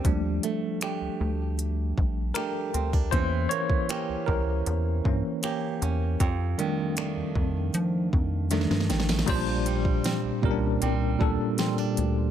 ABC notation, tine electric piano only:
X:1
M:4/4
L:1/8
Q:1/4=78
K:Bb
V:1 name="Tine electric piano"
[F,G,A,D]3 z3 B2 | [=E,^A,^C=c] ^c2 ^A2 [E,A,C] z2 | z [E,G,A,D]4- [E,G,A,D] [E,G,A,D] z | [B,,G,_D=Dc]2 z [B,,G,_D=DB]2 [B,,G,DA]2 z |]